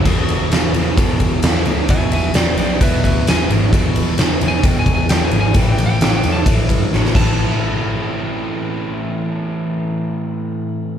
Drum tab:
CC |x---------------|----------------|----------------|--------------x-|
RD |x-x-x-x-x-x-x-x-|x-x-x-x-x-x-x-x-|x-x-x-x-x-x-x-x-|x-x-x-x-x-x-----|
SD |----o-------o---|----o-------o---|----o-------o---|----o-------oo--|
BD |o-------o-o-----|o-------o-o-----|o-------o-o-----|o-------o-o---o-|

CC |----------------|----------------|
RD |----------------|----------------|
SD |----------------|----------------|
BD |----------------|----------------|